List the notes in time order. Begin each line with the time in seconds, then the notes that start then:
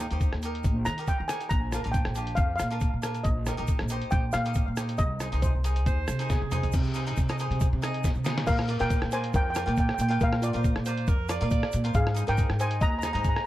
Already playing: G5
0.00 G4 A#4
0.11 D#2 D#4 G4 C5, closed hi-hat, shaker
0.20 kick, closed hi-hat, shaker
0.33 D#2, cross-stick
0.42 D#4 G4 A#4, closed hi-hat, shaker
0.55 closed hi-hat
0.64 A#1, kick, closed hi-hat, shaker
0.85 D#3 A#5, cross-stick, closed hi-hat, shaker
0.98 D#4 G4 A#4, closed hi-hat, shaker
1.07 G5, kick, closed hi-hat, shaker
1.20 D#3
1.28 D#4 G4 A#4 G#5, cross-stick, closed hi-hat, shaker
1.41 closed hi-hat, shaker
1.49 A#1 A#5, kick, closed hi-hat, shaker
1.72 D4 F4 A#4, cross-stick, closed hi-hat, shaker
1.83 A#1 D4 F4 A#4, closed hi-hat, shaker
1.92 G5, kick, closed hi-hat, shaker
2.05 A#1, cross-stick
2.15 D4 F4 G4, closed hi-hat, shaker
2.27 closed hi-hat
2.35 F2 F5, kick, closed hi-hat, shaker
2.56 F5, cross-stick, closed hi-hat, shaker
2.61 A#2
2.70 D4 F4 A#4, closed hi-hat, shaker
2.80 kick, closed hi-hat, shaker
2.94 A#2
3.02 D4 F4 A#4, cross-stick, closed hi-hat, shaker
3.14 closed hi-hat, shaker
3.24 A#1 D#5, kick, closed hi-hat, shaker
3.46 D#4 G4 A#4, cross-stick, closed hi-hat, shaker
3.57 A#1 D#4 G4 A#4, closed hi-hat, shaker
3.67 kick, closed hi-hat, shaker
3.79 A#1, cross-stick
3.89 D#4 G4 C5, closed hi-hat, shaker
4.02 closed hi-hat
4.11 A#1 G5, kick, closed hi-hat, shaker
4.32 A#2 F5, cross-stick, closed hi-hat, shaker
4.44 D#4 G4 C5, closed hi-hat, shaker
4.54 kick, closed hi-hat, shaker
4.68 A#2
4.76 D#4 G4 C5, cross-stick, closed hi-hat, shaker
4.88 closed hi-hat, shaker
4.98 C2 D#5, kick, closed hi-hat, shaker
5.20 D#4 G#4 C5, cross-stick, closed hi-hat, shaker
5.32 C2 D#4 G#4 C5, closed hi-hat, shaker
5.42 C5, kick, closed hi-hat, shaker
5.55 C2
5.64 D#4 G#4 C5, closed hi-hat, shaker
5.76 closed hi-hat, shaker
5.86 D#2 C5, kick, closed hi-hat, shaker
6.08 C3, cross-stick, closed hi-hat, shaker
6.19 D#4 G#4 C5, closed hi-hat, shaker
6.30 G#4, kick, snare, closed hi-hat, shaker
6.42 C3, high tom
6.51 D#4 G#4 C5, closed hi-hat, mid tom, shaker
6.63 closed hi-hat, floor tom, shaker
6.72 C3, kick, closed hi-hat, crash, shaker
6.84 shaker
6.94 D#4 G#4 C5, closed hi-hat, shaker
7.06 D#4 G#4 C5, closed hi-hat, shaker
7.17 C3, kick, closed hi-hat, shaker
7.28 D#4 G#4 D#5, cross-stick, shaker
7.38 D#4 G#4 C5, closed hi-hat, shaker
7.51 C3, closed hi-hat
7.60 kick, closed hi-hat, shaker
7.73 C3
7.82 D#4 G#4 D#5, cross-stick, closed hi-hat, shaker
7.94 closed hi-hat
8.04 kick, snare, closed hi-hat, shaker
8.14 C3, shaker
8.24 D#4 G#4 C5, snare, closed hi-hat, shaker
8.38 snare, closed hi-hat
8.47 A#2 A#4 F5, kick, closed hi-hat, crash, shaker
8.59 cross-stick
8.68 F4 A#4 D5, closed hi-hat
8.79 A#2 F4 A#4 C5 G5, closed hi-hat, shaker
8.90 kick, closed hi-hat, shaker
9.02 A#2, cross-stick
9.11 F4 A#4 C5 D5 G#5, closed hi-hat, shaker
9.24 closed hi-hat
9.34 F2 A#4 G5, kick, closed hi-hat, shaker
9.43 G5
9.50 G5
9.55 F4 A#4 D5 G5, cross-stick, closed hi-hat, shaker
9.66 A#2 F4 A#4 D5 G5, closed hi-hat
9.73 G5, shaker
9.78 G5, kick, closed hi-hat
9.88 G5, cross-stick
9.94 A#2 G5
9.98 G5, closed hi-hat, shaker
10.08 F4 A#4 F5 G5, closed hi-hat
10.20 A#2 A#4 F5, kick, closed hi-hat, shaker
10.33 cross-stick
10.42 F4 A#4 D5, closed hi-hat, shaker
10.53 A#2 F4 A#4 C5, closed hi-hat, shaker
10.64 kick, closed hi-hat, shaker
10.76 A#2, cross-stick
10.85 F4 A#4 C5 D5, closed hi-hat, shaker
10.98 closed hi-hat
11.07 F2 A#4, kick, closed hi-hat, shaker
11.29 F4 A#4 D5, cross-stick, closed hi-hat, shaker
11.41 A#2 F4 A#4 F5, closed hi-hat
11.50 D5, kick, closed hi-hat, shaker
11.63 cross-stick
11.72 A#2, closed hi-hat, shaker
11.84 F4 A#4 C5, closed hi-hat
11.94 G#2 G#4 F5, kick, closed hi-hat, shaker
12.07 cross-stick
12.14 D#4 G#4 C5, closed hi-hat, shaker
12.27 G#2 D#4 G#4 A#4 C5 G5, closed hi-hat, shaker
12.37 kick, closed hi-hat, shaker
12.50 G#2, cross-stick
12.59 D#4 G#4 C5 D#5 G#5, closed hi-hat, shaker
12.71 closed hi-hat
12.81 D#2 D#5 A#5, kick, closed hi-hat, shaker
12.90 A#5
12.99 A#5, shaker
13.03 D#4 G#4 C5 A#5, cross-stick, closed hi-hat
13.13 G#2 D#4 G#4 C5 A#5, closed hi-hat
13.21 A#5, kick, closed hi-hat, shaker
13.29 A#5
13.36 A#5, cross-stick